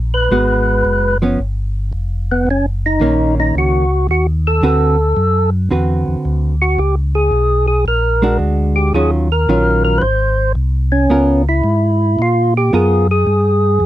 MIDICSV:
0, 0, Header, 1, 4, 480
1, 0, Start_track
1, 0, Tempo, 539568
1, 281, Time_signature, 4, 2, 24, 8
1, 12329, End_track
2, 0, Start_track
2, 0, Title_t, "Tonewheel organ"
2, 0, Program_c, 0, 16
2, 124, Note_on_c, 0, 71, 93
2, 1047, Note_off_c, 0, 71, 0
2, 2060, Note_on_c, 0, 59, 75
2, 2214, Note_off_c, 0, 59, 0
2, 2229, Note_on_c, 0, 61, 83
2, 2367, Note_off_c, 0, 61, 0
2, 2544, Note_on_c, 0, 63, 90
2, 2979, Note_off_c, 0, 63, 0
2, 3023, Note_on_c, 0, 63, 87
2, 3161, Note_off_c, 0, 63, 0
2, 3186, Note_on_c, 0, 66, 85
2, 3620, Note_off_c, 0, 66, 0
2, 3655, Note_on_c, 0, 66, 89
2, 3796, Note_off_c, 0, 66, 0
2, 3978, Note_on_c, 0, 69, 95
2, 4893, Note_off_c, 0, 69, 0
2, 5886, Note_on_c, 0, 66, 73
2, 6042, Note_on_c, 0, 67, 81
2, 6047, Note_off_c, 0, 66, 0
2, 6185, Note_off_c, 0, 67, 0
2, 6361, Note_on_c, 0, 68, 92
2, 6818, Note_off_c, 0, 68, 0
2, 6829, Note_on_c, 0, 68, 87
2, 6982, Note_off_c, 0, 68, 0
2, 7008, Note_on_c, 0, 70, 87
2, 7450, Note_off_c, 0, 70, 0
2, 7791, Note_on_c, 0, 67, 74
2, 7944, Note_off_c, 0, 67, 0
2, 7957, Note_on_c, 0, 68, 88
2, 8102, Note_off_c, 0, 68, 0
2, 8290, Note_on_c, 0, 70, 90
2, 8748, Note_off_c, 0, 70, 0
2, 8759, Note_on_c, 0, 70, 89
2, 8878, Note_on_c, 0, 71, 64
2, 8881, Note_off_c, 0, 70, 0
2, 8910, Note_on_c, 0, 72, 88
2, 8919, Note_off_c, 0, 71, 0
2, 9362, Note_off_c, 0, 72, 0
2, 9714, Note_on_c, 0, 61, 86
2, 10164, Note_off_c, 0, 61, 0
2, 10219, Note_on_c, 0, 64, 92
2, 10869, Note_off_c, 0, 64, 0
2, 10870, Note_on_c, 0, 65, 95
2, 11155, Note_off_c, 0, 65, 0
2, 11185, Note_on_c, 0, 67, 95
2, 11323, Note_off_c, 0, 67, 0
2, 11342, Note_on_c, 0, 68, 89
2, 11631, Note_off_c, 0, 68, 0
2, 11664, Note_on_c, 0, 68, 93
2, 12329, Note_off_c, 0, 68, 0
2, 12329, End_track
3, 0, Start_track
3, 0, Title_t, "Hollow-body jazz guitar"
3, 0, Program_c, 1, 26
3, 280, Note_on_c, 1, 56, 50
3, 286, Note_on_c, 1, 59, 51
3, 287, Note_on_c, 1, 66, 55
3, 1016, Note_off_c, 1, 56, 0
3, 1019, Note_off_c, 1, 59, 0
3, 1020, Note_off_c, 1, 66, 0
3, 1085, Note_on_c, 1, 53, 57
3, 1091, Note_on_c, 1, 59, 59
3, 1097, Note_on_c, 1, 61, 59
3, 1226, Note_off_c, 1, 53, 0
3, 1230, Note_off_c, 1, 59, 0
3, 1232, Note_off_c, 1, 61, 0
3, 2677, Note_on_c, 1, 51, 59
3, 2682, Note_on_c, 1, 58, 60
3, 2688, Note_on_c, 1, 61, 64
3, 3414, Note_off_c, 1, 51, 0
3, 3417, Note_off_c, 1, 58, 0
3, 3420, Note_off_c, 1, 61, 0
3, 4117, Note_on_c, 1, 50, 55
3, 4123, Note_on_c, 1, 60, 61
3, 4124, Note_on_c, 1, 66, 62
3, 4130, Note_on_c, 1, 71, 65
3, 4407, Note_off_c, 1, 50, 0
3, 4409, Note_off_c, 1, 60, 0
3, 4410, Note_off_c, 1, 66, 0
3, 4413, Note_off_c, 1, 71, 0
3, 5076, Note_on_c, 1, 50, 45
3, 5082, Note_on_c, 1, 60, 45
3, 5086, Note_on_c, 1, 66, 47
3, 5089, Note_on_c, 1, 71, 50
3, 5814, Note_off_c, 1, 50, 0
3, 5817, Note_off_c, 1, 60, 0
3, 5819, Note_off_c, 1, 66, 0
3, 5820, Note_off_c, 1, 71, 0
3, 7315, Note_on_c, 1, 56, 61
3, 7324, Note_on_c, 1, 62, 64
3, 7328, Note_on_c, 1, 66, 65
3, 7925, Note_off_c, 1, 56, 0
3, 7930, Note_off_c, 1, 62, 0
3, 7932, Note_off_c, 1, 66, 0
3, 7959, Note_on_c, 1, 51, 57
3, 7962, Note_on_c, 1, 54, 60
3, 7967, Note_on_c, 1, 65, 55
3, 7969, Note_on_c, 1, 61, 56
3, 8248, Note_off_c, 1, 51, 0
3, 8249, Note_off_c, 1, 54, 0
3, 8252, Note_off_c, 1, 65, 0
3, 8253, Note_off_c, 1, 61, 0
3, 8441, Note_on_c, 1, 51, 49
3, 8444, Note_on_c, 1, 54, 52
3, 8446, Note_on_c, 1, 61, 53
3, 8449, Note_on_c, 1, 65, 59
3, 8920, Note_off_c, 1, 51, 0
3, 8922, Note_off_c, 1, 54, 0
3, 8923, Note_off_c, 1, 61, 0
3, 8925, Note_off_c, 1, 65, 0
3, 9875, Note_on_c, 1, 59, 55
3, 9883, Note_on_c, 1, 65, 58
3, 9885, Note_on_c, 1, 70, 63
3, 10167, Note_off_c, 1, 59, 0
3, 10171, Note_off_c, 1, 65, 0
3, 10171, Note_off_c, 1, 70, 0
3, 11325, Note_on_c, 1, 59, 53
3, 11330, Note_on_c, 1, 65, 57
3, 11333, Note_on_c, 1, 70, 60
3, 11613, Note_off_c, 1, 59, 0
3, 11615, Note_off_c, 1, 65, 0
3, 11617, Note_off_c, 1, 70, 0
3, 12329, End_track
4, 0, Start_track
4, 0, Title_t, "Tonewheel organ"
4, 0, Program_c, 2, 16
4, 0, Note_on_c, 2, 34, 78
4, 258, Note_off_c, 2, 34, 0
4, 273, Note_on_c, 2, 32, 78
4, 742, Note_off_c, 2, 32, 0
4, 754, Note_on_c, 2, 30, 83
4, 1223, Note_off_c, 2, 30, 0
4, 1236, Note_on_c, 2, 31, 71
4, 1703, Note_off_c, 2, 31, 0
4, 1713, Note_on_c, 2, 29, 79
4, 2182, Note_off_c, 2, 29, 0
4, 2194, Note_on_c, 2, 30, 77
4, 2662, Note_off_c, 2, 30, 0
4, 2669, Note_on_c, 2, 34, 83
4, 3139, Note_off_c, 2, 34, 0
4, 3160, Note_on_c, 2, 37, 72
4, 3625, Note_off_c, 2, 37, 0
4, 3636, Note_on_c, 2, 39, 83
4, 4103, Note_off_c, 2, 39, 0
4, 4108, Note_on_c, 2, 38, 80
4, 4579, Note_off_c, 2, 38, 0
4, 4595, Note_on_c, 2, 42, 83
4, 5063, Note_off_c, 2, 42, 0
4, 5084, Note_on_c, 2, 40, 72
4, 5379, Note_off_c, 2, 40, 0
4, 5407, Note_on_c, 2, 40, 34
4, 5485, Note_off_c, 2, 40, 0
4, 5561, Note_on_c, 2, 38, 78
4, 6026, Note_off_c, 2, 38, 0
4, 6035, Note_on_c, 2, 37, 78
4, 6503, Note_off_c, 2, 37, 0
4, 6512, Note_on_c, 2, 35, 81
4, 6981, Note_off_c, 2, 35, 0
4, 6990, Note_on_c, 2, 34, 72
4, 7460, Note_off_c, 2, 34, 0
4, 7465, Note_on_c, 2, 38, 81
4, 7938, Note_off_c, 2, 38, 0
4, 7950, Note_on_c, 2, 39, 79
4, 8420, Note_off_c, 2, 39, 0
4, 8426, Note_on_c, 2, 34, 85
4, 8899, Note_off_c, 2, 34, 0
4, 8911, Note_on_c, 2, 32, 76
4, 9381, Note_off_c, 2, 32, 0
4, 9387, Note_on_c, 2, 36, 85
4, 9860, Note_off_c, 2, 36, 0
4, 9870, Note_on_c, 2, 37, 82
4, 10341, Note_off_c, 2, 37, 0
4, 10351, Note_on_c, 2, 44, 85
4, 10822, Note_off_c, 2, 44, 0
4, 10841, Note_on_c, 2, 46, 77
4, 11308, Note_off_c, 2, 46, 0
4, 11327, Note_on_c, 2, 42, 88
4, 11791, Note_off_c, 2, 42, 0
4, 11801, Note_on_c, 2, 43, 81
4, 12269, Note_off_c, 2, 43, 0
4, 12277, Note_on_c, 2, 41, 84
4, 12329, Note_off_c, 2, 41, 0
4, 12329, End_track
0, 0, End_of_file